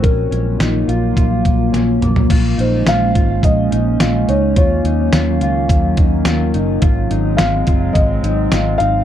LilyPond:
<<
  \new Staff \with { instrumentName = "Felt piano" } { \time 4/4 \key bes \minor \tempo 4 = 106 bes'2. r4 | r4 f''4 ees''4. des''8 | des''2. r4 | r4 f''4 ees''4. f''8 | }
  \new Staff \with { instrumentName = "Celesta" } { \time 4/4 \key bes \minor r1 | r8 c''2.~ c''8~ | c''8 r2. r8 | r1 | }
  \new Staff \with { instrumentName = "Clean electric guitar" } { \time 4/4 \key bes \minor des'8 des'8 ees'8 f'8 f'4 des'8 bes8 | f'8 ees'8 f'8 f'4 ees'8 f'8 ees'8 | f'8 ees'8 f'8 f'4 ees'8 f'8 ees'8 | f'8 ees'8 f'8 f'4 ees'8 f'8 ees'8 | }
  \new Staff \with { instrumentName = "Ambient pad" } { \clef bass \time 4/4 \key bes \minor << { bes1 | bes1~ | bes1 | c'1 | } \\ { <ges f'>1 | <aes des'>1 | <ees ges>1 | <ges aes>1 | } >> }
  \new Staff \with { instrumentName = "Fingered electric bass" } { \clef bass \time 4/4 \key bes \minor bes,,8 bes,,8 bes,,8 bes,,8 bes,,8 bes,,8 bes,,8 bes,,8 | bes,,8 bes,,8 bes,,8 aes,,8 bes,,8 bes,,8 bes,,8 des,8 | ees,8 ees,8 ees,8 des,8 ees,8 ees,8 ees,8 ges,,8 | aes,,8 aes,,8 aes,,8 ges,,8 aes,,8 aes,,8 aes,,8 aes,,8 | }
  \new DrumStaff \with { instrumentName = "Drums" } \drummode { \time 4/4 <hh bd>8 hh8 <hh sn tamb>8 hh8 <hh bd>8 <hh bd>8 <hh sn>8 <hh toml>16 tomfh16 | <cymc hh bd>8 hh8 <hh sn tamb>8 <hh bd>8 <hh bd>8 hh8 <hh sn tamb>8 hh8 | <hh bd>8 hh8 <hh sn tamb>8 hh8 <hh bd>8 <hh bd>8 <hh sn tamb>8 hh8 | <hh bd>8 hh8 <hh sn tamb>8 <hh bd>8 <hh bd>8 hh8 <hh sn tamb>8 hh8 | }
>>